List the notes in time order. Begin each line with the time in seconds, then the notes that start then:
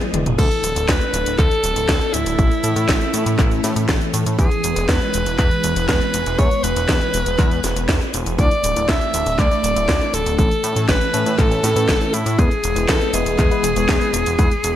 Already playing: E3 G#3 B3 E4 G#4
0.01 closed hi-hat, high tom
0.13 E1 G#3 B3 E4 D5, closed hi-hat, mid tom
0.26 E1, closed hi-hat, mid tom
0.38 D2 E3 A3 D4 A4, kick, closed hi-hat, crash, cabasa
0.51 closed hi-hat, cabasa
0.63 D1, closed hi-hat, cabasa
0.76 D1, closed hi-hat, cabasa
0.89 D2 B4, kick, snare, clap, closed hi-hat, cabasa
1.01 closed hi-hat, cabasa
1.14 D1, closed hi-hat, cabasa
1.26 D1, closed hi-hat, cabasa
1.38 D2 A4, kick, clap, closed hi-hat, cabasa
1.51 closed hi-hat, cabasa
1.64 D1, closed hi-hat, cabasa
1.76 D1, closed hi-hat, cabasa
1.89 D2, kick, snare, clap, closed hi-hat, cabasa
2.01 closed hi-hat, cabasa
2.13 D1 E4, closed hi-hat, cabasa
2.26 D1, closed hi-hat, cabasa
2.38 A1 C#4, kick, closed hi-hat, cabasa
2.51 closed hi-hat, cabasa
2.64 A2, closed hi-hat, cabasa
2.76 A2, closed hi-hat, cabasa
2.89 A1, kick, snare, clap, closed hi-hat, cabasa
3.01 closed hi-hat, cabasa
3.14 A2, closed hi-hat, cabasa
3.26 A2, closed hi-hat, cabasa
3.39 A1, kick, clap, closed hi-hat, cabasa
3.51 closed hi-hat, cabasa
3.64 A2, snare, closed hi-hat, cabasa
3.76 A2, closed hi-hat, cabasa
3.89 A1, kick, snare, clap, closed hi-hat, cabasa
4.01 closed hi-hat, cabasa
4.14 A2, closed hi-hat, cabasa
4.26 A2, closed hi-hat, cabasa
4.38 E2 G#3 B3 G#4, kick, closed hi-hat, cabasa
4.51 closed hi-hat, cabasa
4.64 E1, closed hi-hat, cabasa
4.76 E1, closed hi-hat, cabasa
4.89 E2 B4, kick, snare, clap, closed hi-hat, cabasa
5.01 closed hi-hat, cabasa
5.14 E1, closed hi-hat, cabasa
5.26 E1, closed hi-hat, cabasa
5.38 E2 B4, kick, clap, closed hi-hat, cabasa
5.51 closed hi-hat, cabasa
5.64 E1, closed hi-hat, cabasa
5.76 E1, closed hi-hat, cabasa
5.88 E2 B4, kick, snare, clap, closed hi-hat, cabasa
6.01 closed hi-hat, cabasa
6.14 E1, closed hi-hat, cabasa
6.26 E1, closed hi-hat, cabasa
6.38 E2 C#5, kick, closed hi-hat, cabasa
6.51 closed hi-hat, cabasa
6.64 E1 B4, closed hi-hat, cabasa
6.76 E1, closed hi-hat, cabasa
6.89 E2, kick, snare, clap, closed hi-hat, cabasa
7.01 closed hi-hat, cabasa
7.14 E1, closed hi-hat, cabasa
7.26 E1, closed hi-hat, cabasa
7.38 E2, kick, clap, closed hi-hat, cabasa
7.51 closed hi-hat, cabasa
7.64 E1, snare, closed hi-hat, cabasa
7.76 E1, closed hi-hat, cabasa
7.88 E2, kick, snare, clap, closed hi-hat, cabasa
8.01 closed hi-hat, cabasa
8.14 E1, closed hi-hat, cabasa
8.26 E1, closed hi-hat, cabasa
8.39 D2 A3 D4 E4 A4 D5, kick, closed hi-hat, cabasa
8.51 closed hi-hat, cabasa
8.64 D1, closed hi-hat, cabasa
8.76 D1 A3 D4 E4 D5, closed hi-hat, cabasa
8.88 D2 E5, kick, snare, clap, closed hi-hat, cabasa
9.01 closed hi-hat, cabasa
9.14 D1 A3 D4 E4 D5, closed hi-hat, cabasa
9.26 D1, closed hi-hat, cabasa
9.39 D2 D5, kick, clap, closed hi-hat, cabasa
9.51 A3 D4 E4 D5, closed hi-hat, cabasa
9.64 D1, closed hi-hat, cabasa
9.76 D1 A3 D4 E4 E5, closed hi-hat, cabasa
9.88 D2, kick, snare, clap, closed hi-hat, cabasa
10.01 A3 D4 E4 D5, closed hi-hat, cabasa
10.14 D1 A4, closed hi-hat, cabasa
10.26 D1, closed hi-hat, cabasa
10.39 A1 E3 A3 C#4 A4, kick, closed hi-hat, cabasa
10.51 closed hi-hat, cabasa
10.64 A2, closed hi-hat, cabasa
10.76 A2 E3 A3 C#4 A4, closed hi-hat, cabasa
10.89 A1 B4, kick, snare, clap, closed hi-hat, cabasa
11.01 closed hi-hat, cabasa
11.13 A2 E3 A3 C#4 A4, closed hi-hat, cabasa
11.26 A2, closed hi-hat, cabasa
11.38 A1 A4, kick, clap, closed hi-hat, cabasa
11.51 E3 A3 C#4 A4, closed hi-hat, cabasa
11.63 A2, snare, closed hi-hat, cabasa
11.76 A2 E3 A3 C#4 B4, closed hi-hat, cabasa
11.89 A1, kick, snare, clap, closed hi-hat, cabasa
12.01 E3 A3 C#4 A4, closed hi-hat, cabasa
12.14 A2 E4, closed hi-hat, cabasa
12.26 A2, closed hi-hat, cabasa
12.38 E2 E3 G#3 B3 E4 G#4 B4, kick, closed hi-hat, cabasa
12.51 closed hi-hat, cabasa
12.64 E1, closed hi-hat, cabasa
12.76 E1 G#3 B3 E4 B4, closed hi-hat, cabasa
12.88 E2 A4, kick, snare, clap, closed hi-hat, cabasa
13.01 closed hi-hat, cabasa
13.14 E1 G#3 B3 E4 G#4 B4, closed hi-hat, cabasa
13.26 E1, closed hi-hat, cabasa
13.39 E2, kick, clap, closed hi-hat, cabasa
13.51 G#3 B3 E4 B4, closed hi-hat, cabasa
13.63 E1, closed hi-hat, cabasa
13.76 E1 G#3 B3 E4 C#5, closed hi-hat, cabasa
13.89 E2, kick, snare, clap, closed hi-hat, cabasa
14.01 G#3 B3 E4 B4, closed hi-hat, cabasa
14.13 E1, closed hi-hat, cabasa
14.26 E1, closed hi-hat, cabasa
14.39 E2 G#3 B3 E4 B4, kick, closed hi-hat, cabasa
14.51 closed hi-hat, cabasa
14.64 E1, closed hi-hat, cabasa